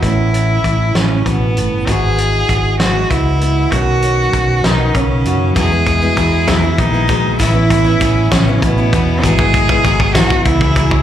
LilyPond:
<<
  \new Staff \with { instrumentName = "Cello" } { \time 6/8 \key e \major \tempo 4. = 65 e'4. cis'8 b4 | gis'4. fis'8 e'4 | fis'4. dis'8 cis'4 | gis'4. e'8 dis'4 |
e'4. cis'8 b4 | gis'4. fis'8 e'4 | }
  \new Staff \with { instrumentName = "Steel-string acoustic guitar" } { \time 6/8 \key e \major << { <e b cis'>8 cis'2~ cis'8 | <e gis b fis'>8 b4 gis8 b8 b8 | <dis b cis'>8 cis'4 b8 cis'8 fis'8 | r2. |
r2. | r2. | } \\ { a,4. cis8 b,8 a,8 | gis,4. e4. | b,4. dis4. | r2. |
r2. | r2. | } >> }
  \new Staff \with { instrumentName = "Steel-string acoustic guitar" } { \time 6/8 \key e \major r2. | r2. | r2. | <e, b, fis gis b e'>16 <fis gis b e'>8 <fis gis b e'>16 <fis gis b e'>8 <e, b, fis gis b e'>16 <fis gis b e'>8 <fis gis b e'>16 <fis gis b>8 |
<a, e b cis' e'>16 <b cis' e'>8 <b cis' e'>16 <e b cis' e'>8 <a, e b cis' e'>16 <b cis' e'>8 <b cis' e'>16 <e b cis' e'>8 | <gis, e fis b e' gis'>16 <fis b e' gis'>8 <fis b e' gis'>16 <fis b e' gis'>8 <gis, e fis b e' gis'>16 <fis b e' gis'>8 <fis b e' gis'>16 <fis b e' gis'>8 | }
  \new Staff \with { instrumentName = "Cello" } { \clef bass \time 6/8 \key e \major r2. | r2. | r4. dis8 cis4 | gis4. e8 dis4 |
e4. cis8 b,4 | gis4. fis8 e4 | }
  \new Staff \with { instrumentName = "Fingered electric bass" } { \clef bass \time 6/8 \key e \major a,,4 a,,8 a,,8 a,,8 g,,8 | gis,,4 gis,,4 cis,4 | b,,4 b,,8 b,,8 b,,8 fis,8 | e,4 e,4 ais,,4 |
a,,4 a,,8 a,,8 a,,8 e,8 | gis,,4 gis,,4 cis,4 | }
  \new DrumStaff \with { instrumentName = "Drums" } \drummode { \time 6/8 <hh bd>8 hh8 <hh bd>8 <hh sn>8 <hh bd>8 hh8 | <hh bd>8 hh8 <hh bd>8 <hh sn>8 <hh bd>8 hh8 | <hh bd>8 hh8 <hh bd>8 <hh sn>8 <hh bd>8 hh8 | <hh bd>8 <hh bd>8 <hh bd>8 <hh bd sn>8 <hh bd>8 <hh bd>8 |
<hh bd>8 <hh bd>8 <hh bd>8 <hh bd sn>8 <hh bd>8 <hh bd>8 | <hh bd>16 bd16 <hh bd>16 bd16 <hh bd>16 bd16 <hh bd sn>16 bd16 <hh bd>16 bd16 <hh bd>16 bd16 | }
>>